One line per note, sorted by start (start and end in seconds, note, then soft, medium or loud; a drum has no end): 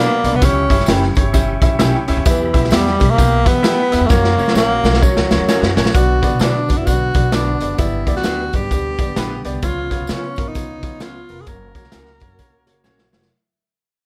0.00 0.37 A#3 loud
0.00 0.19 B3 loud
0.00 0.11 D4 medium
0.00 0.19 D4 medium
0.00 0.12 F#4 medium
0.00 0.19 F#4 medium
0.00 0.39 F#4 medium
0.00 0.12 B4 medium
0.00 0.19 D5 loud
0.00 0.41 D5 medium
0.00 0.41 B5 medium
0.24 0.32 B1 medium
0.24 0.39 B3 medium
0.24 0.39 D4 medium
0.24 0.39 F#4 medium
0.24 0.39 D5 medium
0.24 closed hi-hat medium
0.24 tambourine medium
0.33 0.40 C2 loud
0.33 0.47 B3 loud
0.41 0.65 C#2 loud
0.41 1.13 C#3 medium
0.41 0.65 C#4 medium
0.41 0.65 E4 medium
0.41 2.24 G4 medium
0.41 0.65 G4 medium
0.41 4.06 E5 medium
0.41 0.65 E5 loud
0.41 2.24 C#6 medium
0.41 kick loud
0.41 closed hi-hat loud
0.41 tambourine medium
0.45 0.90 C#4 medium
0.70 0.85 G1 loud
0.70 0.84 C#4 medium
0.70 0.84 E4 medium
0.70 0.84 G4 medium
0.70 0.84 E5 loud
0.70 kick medium
0.70 closed hi-hat medium
0.70 tambourine medium
0.80 snare soft
0.86 1.12 F#1 medium
0.86 1.03 C#4 medium
0.86 1.11 C#4 medium
0.86 1.11 E4 medium
0.86 1.04 E4 medium
0.86 1.11 G4 medium
0.86 1.04 G4 loud
0.86 1.11 B4 medium
0.86 snare loud
0.86 closed hi-hat loud
0.86 tambourine loud
1.02 snare soft
1.15 1.55 G1 medium
1.15 1.31 C#4 medium
1.15 1.30 E4 medium
1.15 1.31 G4 medium
1.15 1.31 C#5 medium
1.15 kick medium
1.15 closed hi-hat medium
1.15 tambourine soft
1.33 1.56 C#4 medium
1.33 1.56 E4 medium
1.33 1.56 G4 medium
1.33 1.57 E5 loud
1.33 kick medium
1.33 closed hi-hat medium
1.33 tambourine loud
1.62 1.77 A#1 medium
1.62 1.76 C#4 medium
1.62 1.76 E4 medium
1.62 1.76 G4 medium
1.62 1.76 E5 loud
1.62 kick loud
1.62 closed hi-hat loud
1.62 tambourine medium
1.79 1.92 B1 medium
1.79 2.02 C#4 loud
1.79 1.95 C#4 loud
1.79 2.02 E4 medium
1.79 1.96 E4 medium
1.79 2.02 G4 loud
1.79 1.96 G4 loud
1.79 2.02 E5 loud
1.79 snare loud
1.79 closed hi-hat medium
1.79 tambourine medium
2.07 2.16 D2 medium
2.07 2.22 C#4 loud
2.07 2.22 E4 medium
2.07 2.22 G4 medium
2.07 2.22 E5 loud
2.07 closed hi-hat medium
2.07 tambourine medium
2.17 2.24 D#2 loud
2.25 2.49 E2 loud
2.25 2.96 E3 medium
2.25 2.48 B3 medium
2.25 2.49 E4 loud
2.25 2.48 G4 medium
2.25 4.09 G4 medium
2.25 2.49 E5 loud
2.25 4.09 B5 medium
2.25 kick loud
2.25 closed hi-hat loud
2.25 tambourine loud
2.30 2.71 E3 medium
2.53 2.69 B1 medium
2.53 2.68 B3 medium
2.53 2.68 E4 medium
2.53 2.68 G4 medium
2.53 2.68 E5 loud
2.53 kick medium
2.53 closed hi-hat medium
2.53 tambourine medium
2.64 snare soft
2.70 2.95 E2 loud
2.70 2.94 B3 medium
2.70 2.87 B3 medium
2.70 2.94 E4 medium
2.70 2.88 E4 medium
2.70 2.94 G4 medium
2.70 2.88 G4 loud
2.70 2.95 E5 medium
2.70 snare loud
2.70 closed hi-hat loud
2.70 tambourine medium
2.75 3.13 G3 loud
2.87 snare soft
2.99 3.15 B1 loud
2.99 3.14 B3 medium
2.99 3.14 E4 medium
2.99 3.14 G4 medium
2.99 3.14 E5 medium
2.99 kick loud
2.99 closed hi-hat medium
2.99 tambourine medium
3.11 3.48 A#3 loud
3.17 3.42 B1 loud
3.17 3.40 B3 medium
3.17 3.40 E4 medium
3.17 3.40 G4 medium
3.17 3.41 G5 medium
3.17 kick medium
3.17 closed hi-hat medium
3.17 tambourine loud
3.45 3.73 E3 medium
3.45 3.60 B3 medium
3.45 4.08 B3 loud
3.45 3.60 E4 medium
3.45 3.60 G4 medium
3.45 3.60 E5 medium
3.45 kick loud
3.45 closed hi-hat loud
3.45 tambourine medium
3.63 3.86 B3 medium
3.63 3.79 B3 medium
3.63 3.86 E4 loud
3.63 3.80 E4 medium
3.63 3.86 G4 medium
3.63 3.80 G4 medium
3.63 3.86 E5 loud
3.63 snare loud
3.63 closed hi-hat loud
3.63 tambourine medium
3.91 4.00 E2 medium
3.91 4.06 B3 medium
3.91 4.06 E4 medium
3.91 4.06 G4 medium
3.91 4.06 E5 medium
3.91 closed hi-hat medium
3.91 tambourine medium
4.01 4.08 F2 medium
4.06 4.12 A3 medium
4.06 4.33 A#3 medium
4.06 4.32 C#4 medium
4.06 4.33 F#4 medium
4.06 5.92 A#5 medium
4.10 4.34 F#2 loud
4.10 4.56 A#3 loud
4.10 5.92 F#4 medium
4.10 4.33 C#5 loud
4.10 5.92 C#5 medium
4.10 kick loud
4.10 snare medium
4.10 tambourine loud
4.24 snare medium
4.38 4.53 C#2 medium
4.38 4.52 A#3 loud
4.38 4.52 C#4 medium
4.38 4.52 F#4 medium
4.38 4.52 C#5 medium
4.38 tambourine medium
4.48 snare medium
4.55 4.79 A#1 loud
4.55 4.78 A#3 medium
4.55 5.05 A#3 loud
4.55 4.78 C#4 medium
4.55 4.71 C#4 medium
4.55 4.78 F#4 medium
4.55 4.71 F#4 medium
4.55 4.72 A#4 loud
4.55 4.78 C#5 medium
4.55 snare medium
4.55 tambourine loud
4.84 4.98 B1 loud
4.84 4.98 A#3 medium
4.84 4.98 C#4 medium
4.84 4.98 F#4 medium
4.84 4.98 C#5 medium
4.84 snare medium
4.84 tambourine medium
4.94 snare medium
5.01 5.77 F#3 medium
5.01 5.24 A#3 medium
5.01 5.24 C#4 medium
5.01 5.24 F#4 medium
5.01 5.25 C#5 medium
5.01 kick medium
5.01 tambourine medium
5.16 5.28 C#2 loud
5.16 snare medium
5.30 5.38 C#2 medium
5.30 5.44 A#3 medium
5.30 5.44 C#4 medium
5.30 5.45 F#4 medium
5.30 5.45 C#5 medium
5.30 snare loud
5.30 tambourine medium
5.39 5.58 E2 loud
5.48 5.71 A#3 medium
5.48 5.71 C#4 medium
5.48 5.63 C#4 loud
5.48 5.71 F#4 medium
5.48 5.64 F#4 medium
5.48 5.64 A#4 loud
5.48 5.71 C#5 loud
5.48 snare loud
5.48 tambourine loud
5.62 5.78 F#2 loud
5.62 snare loud
5.76 5.91 A#1 medium
5.76 5.90 A#3 loud
5.76 5.90 C#4 medium
5.76 5.91 F#4 medium
5.76 5.91 C#5 loud
5.76 snare loud
5.76 tambourine medium
5.86 snare loud
5.94 6.18 B1 loud
5.94 6.65 B2 medium
5.94 9.59 D3 medium
5.94 11.42 B3 medium
5.94 6.17 B3 medium
5.94 7.76 F#4 medium
5.94 6.43 F#4 medium
5.94 6.17 F#4 medium
5.94 6.17 D5 loud
5.94 kick loud
5.94 closed hi-hat medium
5.94 tambourine medium
6.22 6.36 B3 loud
6.22 6.36 F#4 medium
6.22 6.37 D5 loud
6.22 kick medium
6.22 closed hi-hat medium
6.22 tambourine medium
6.31 6.39 B1 medium
6.39 6.64 B2 loud
6.39 6.63 B3 medium
6.39 6.55 D4 medium
6.39 6.80 D4 medium
6.39 6.56 F#4 loud
6.39 6.63 F#4 medium
6.39 6.56 B4 loud
6.39 6.63 D5 medium
6.39 snare loud
6.39 closed hi-hat loud
6.39 tambourine medium
6.68 6.84 F#1 medium
6.68 6.82 B3 medium
6.68 6.83 F#4 medium
6.68 6.83 D5 medium
6.68 kick medium
6.68 closed hi-hat medium
6.68 tambourine soft
6.78 6.88 E4 medium
6.86 7.10 B1 medium
6.86 7.09 B3 medium
6.86 7.32 F#4 loud
6.86 7.09 F#4 medium
6.86 7.09 D5 medium
6.86 kick medium
6.86 closed hi-hat medium
6.86 tambourine loud
7.14 7.53 B1 loud
7.14 7.28 B3 medium
7.14 7.29 F#4 medium
7.14 7.29 D5 medium
7.14 kick loud
7.14 closed hi-hat medium
7.14 tambourine medium
7.32 7.55 B3 medium
7.32 7.47 D4 medium
7.32 7.76 D4 medium
7.32 7.55 F#4 medium
7.32 7.48 F#4 medium
7.32 7.48 B4 medium
7.32 7.55 D5 loud
7.32 snare loud
7.32 closed hi-hat medium
7.32 tambourine medium
7.60 7.75 F#1 medium
7.60 7.75 B3 medium
7.60 7.75 F#4 medium
7.60 7.75 D5 medium
7.60 closed hi-hat medium
7.60 tambourine medium
7.76 8.02 G1 loud
7.76 8.49 G2 medium
7.76 9.60 G3 medium
7.76 8.01 B3 loud
7.76 8.13 E4 medium
7.76 8.01 G4 medium
7.76 8.01 D5 loud
7.76 kick loud
7.76 closed hi-hat medium
7.76 tambourine medium
8.06 8.21 D2 medium
8.06 8.21 B3 medium
8.06 8.21 G4 medium
8.06 8.21 D5 loud
8.06 kick loud
8.06 closed hi-hat medium
8.06 tambourine medium
8.16 8.57 F#4 loud
8.16 snare soft
8.23 8.48 D2 loud
8.23 8.47 B3 medium
8.23 8.39 D4 loud
8.23 8.47 G4 medium
8.23 8.40 G4 medium
8.23 8.40 B4 loud
8.23 8.47 D5 medium
8.23 snare loud
8.23 closed hi-hat medium
8.23 tambourine loud
8.53 8.68 G2 loud
8.53 8.67 B3 medium
8.53 8.67 G4 medium
8.53 9.46 G4 medium
8.53 8.68 D5 medium
8.53 kick medium
8.53 closed hi-hat medium
8.53 tambourine soft
8.71 8.94 D2 loud
8.71 8.94 B3 medium
8.71 8.94 G4 medium
8.71 8.94 D5 medium
8.71 kick medium
8.71 closed hi-hat medium
8.71 tambourine medium
8.99 9.13 G1 medium
8.99 9.13 B3 medium
8.99 9.13 G4 medium
8.99 9.13 D5 medium
8.99 kick loud
8.99 closed hi-hat medium
8.99 tambourine medium
9.16 9.40 A#1 medium
9.16 9.39 B3 loud
9.16 9.31 D4 medium
9.16 9.32 G4 loud
9.16 9.39 G4 medium
9.16 9.32 B4 loud
9.16 9.40 B4 loud
9.16 snare loud
9.16 closed hi-hat loud
9.16 tambourine medium
9.45 9.60 C2 medium
9.45 9.59 B3 loud
9.45 9.59 G4 medium
9.45 9.59 D5 loud
9.45 closed hi-hat medium
9.45 tambourine medium
9.62 9.86 C#2 loud
9.62 13.27 C#3 medium
9.62 10.33 C#3 medium
9.62 9.85 B3 medium
9.62 11.45 F4 medium
9.62 9.85 F4 medium
9.62 10.13 F4 medium
9.62 9.85 C#5 loud
9.62 kick loud
9.62 closed hi-hat medium
9.62 tambourine loud
9.90 10.05 B3 loud
9.90 10.05 F4 medium
9.90 10.05 C#5 loud
9.90 kick medium
9.90 closed hi-hat medium
9.90 tambourine soft
10.00 10.07 C#2 medium
10.07 10.32 C#3 loud
10.07 10.31 B3 medium
10.07 10.24 C#4 medium
10.07 10.24 F4 medium
10.07 10.32 F4 medium
10.07 10.24 B4 medium
10.07 snare loud
10.07 closed hi-hat medium
10.07 tambourine medium
10.12 10.50 C#4 medium
10.36 10.52 G#1 loud
10.36 10.51 B3 medium
10.36 10.51 F4 medium
10.36 10.51 A#4 medium
10.36 kick medium
10.36 closed hi-hat medium
10.36 tambourine medium
10.48 11.04 D#4 loud
10.55 10.79 C#2 loud
10.55 10.78 B3 medium
10.55 10.78 F4 medium
10.55 10.78 C#5 medium
10.55 kick medium
10.55 closed hi-hat medium
10.55 tambourine medium
10.83 11.21 C#2 medium
10.83 10.97 B3 medium
10.83 10.97 F4 medium
10.83 10.97 C#5 medium
10.83 kick loud
10.83 closed hi-hat medium
10.83 tambourine medium
11.00 11.23 B3 medium
11.00 11.15 C#4 medium
11.00 11.23 F4 medium
11.00 11.16 F4 medium
11.00 11.43 F4 loud
11.00 11.16 B4 medium
11.00 11.23 C#5 loud
11.00 snare loud
11.00 closed hi-hat medium
11.00 tambourine medium
11.29 11.44 F1 medium
11.29 11.43 B3 medium
11.29 11.43 F4 medium
11.29 11.43 A#4 medium
11.29 open hi-hat medium
11.29 tambourine medium
11.41 11.48 G#4 loud
11.46 11.70 F#1 loud
11.46 11.69 A#3 medium
11.46 13.29 A#3 soft
11.46 11.69 F#4 medium
11.46 13.29 F#4 medium
11.46 13.10 A#4 medium
11.46 11.69 C#5 medium
11.46 kick loud
11.46 closed hi-hat medium
11.46 tambourine medium
11.75 11.89 C#2 medium
11.75 11.89 A#3 loud
11.75 11.89 F#4 medium
11.75 11.89 C#5 loud
11.75 kick medium
11.75 closed hi-hat medium
11.75 tambourine medium
11.84 snare soft
11.92 12.17 C#2 medium
11.92 12.15 A#3 medium
11.92 12.08 C#4 medium
11.92 12.08 F#4 loud
11.92 12.15 F#4 medium
11.92 12.15 A#4 medium
11.92 12.08 A#4 medium
11.92 snare loud
11.92 closed hi-hat loud
11.92 tambourine medium
12.06 snare soft
12.20 12.36 F#2 loud
12.20 12.35 A#3 medium
12.20 12.35 F#4 medium
12.20 12.35 C#5 medium
12.20 kick medium
12.20 closed hi-hat medium
12.20 tambourine soft
12.39 12.62 C#2 medium
12.39 12.61 A#3 medium
12.39 12.61 F#4 medium
12.39 12.61 C#5 loud
12.39 kick medium
12.39 closed hi-hat medium
12.39 tambourine loud
12.67 12.81 F#1 medium
12.67 12.81 A#3 medium
12.67 12.81 F#4 medium
12.67 12.81 C#5 medium
12.67 closed hi-hat medium
12.67 tambourine medium
12.84 13.08 A#1 medium
12.84 13.07 A#3 loud
12.84 12.99 C#4 medium
12.84 13.07 F#4 loud
12.84 13.00 F#4 medium
12.84 13.00 A#4 medium
12.84 13.07 C#5 loud
12.84 snare medium
12.84 tambourine medium
12.98 snare medium
13.12 13.27 F1 medium
13.12 13.26 A#3 medium
13.12 13.26 F#4 medium
13.12 13.27 C#5 loud
13.12 snare medium
13.12 tambourine medium
13.22 snare medium